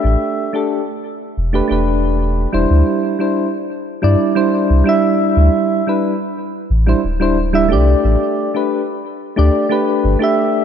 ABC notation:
X:1
M:4/4
L:1/16
Q:1/4=90
K:Am
V:1 name="Synth keys"
[A,DGe]3 [A,DGA]2 z4 [A,DGB] [A,DGB]4- [A,DGB] [G,DEc]- | [G,DEc]3 [G,DEc]2 z3 [G,DEd]2 [G,DEc]3 [G,DEe]3- | [G,DEe]3 [G,DEB]2 z4 [G,DEc] z [G,DEc] z [G,DEe] [A,DGd]2- | [A,DGd]3 [A,DGB]2 z3 [A,DGd]2 [A,DGB]3 [A,DGe]3 |]
V:2 name="Sub bass" clef=bass
A,,, z6 z E,,, z E,,,4- E,,, E,,, | D,, z6 z G,, z3 C,, z3 | D,, z6 z A,,, z D,,,4 C,, z | A,,, z6 z D,, z3 G,,, z3 |]